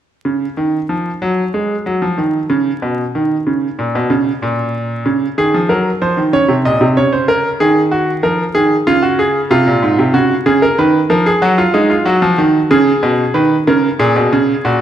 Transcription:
0.25 C#3
0.57 D#3
0.89 F3
1.22 F#3
1.54 G#3
1.86 F#3
2.02 F3
2.18 D#3
2.50 C#3
2.82 B2
3.15 D#3
3.47 C#3
3.79 A#2
3.95 B2
4.10 C#3
4.42 A#2
5.06 C#3
5.38 D#3 G#4
5.54 F3
5.69 F#3 A#4
6.02 F3 C5
6.17 D#3
6.33 C#3 C#5
6.48 C3
6.65 A#2 D#5
6.81 C3
6.97 C#3 C#5
7.13 C5
7.28 A#4
7.60 D#3 G#4
7.91 F#4
8.23 F3 A#4
8.55 D#3 G#4
8.87 C#3 F4
9.02 F#4
9.19 G#4
9.51 C3 F4
9.67 A#2
9.83 G#2
9.99 C3
10.14 C#3 F#4
10.46 C#3 G#4
10.62 A#4
10.78 D#3 B4
11.10 F3 A#4
11.26 G#4
11.42 F#3 F#4
11.58 F4
11.74 G#3 D#4
11.90 F4
12.05 F#3 F#4
12.22 F3
12.38 D#3
12.71 C#3 G#4
13.03 B2
13.34 D#3 B4
13.67 C#3 A#4
13.99 A#2 G#4
14.16 B2
14.33 C#3
14.65 A#2 F#4

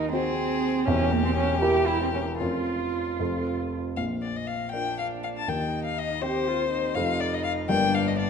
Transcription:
Already playing: D#2 D#3 D#4
0.12 C4 F#4 G#4 C5
0.86 E1 E2 C#4 G4
1.11 A#3
1.25 C4
1.36 C#4
1.61 E4 G4 A#4
1.87 E4
2.02 C4
2.15 C#4
2.40 F1 F2 C#4 F4 A#4
3.19 F1 F2 C4 F4 A4
3.97 A#1 A#2 F5
4.22 D5
4.36 D#5
4.47 F5
4.72 D4 F4 A#4 G5
4.99 F5
5.24 F5
5.38 A5
5.48 D#2 D#3 D#4 G5
5.85 F5
5.99 D#5
6.22 C4 G4 C5
6.48 F4
6.70 D#4
6.95 F1 F2 C4 F4 A4 F5
7.20 D5
7.34 D#5
7.44 F5
7.69 G1 G2 A#3 D4 A#4 G5
7.94 F5
8.08 D#5
8.19 D5

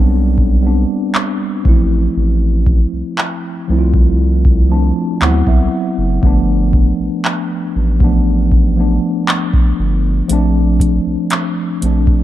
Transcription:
Already playing: B1 G3 B3 C4 D4
0.38 kick
0.62 G3 B3 C4
0.67 D4
1.15 clap
1.64 A1 F3 A3 C4, kick
1.69 E4
2.17 A1
2.67 kick
2.93 C2
3.18 clap
3.68 C2 F3 A3 C4
3.72 E4
3.79 F4
3.94 kick
4.45 kick
4.69 F3 A3 C4 A5
4.74 D4
5.20 D2 E3 B3 C4 F#5, clap
5.25 F#3 E4
5.47 C2 E5, kick
5.98 F#1
6.22 G1 F3 A3 B3, kick
6.27 D4
6.73 kick
6.99 A1
7.25 clap
7.76 A1
7.99 F3 A3 B3, kick
8.04 D4
8.52 kick
8.76 F3 A3 B3
8.80 D4
9.29 clap
9.54 kick
9.79 G1
10.28 A#1 F3 A3 C4, closed hi-hat
10.33 D4
10.80 kick, closed hi-hat
11.06 A#1
11.30 clap, closed hi-hat
11.81 A#1 F3 A3 C4, closed hi-hat
11.86 D4
12.07 kick

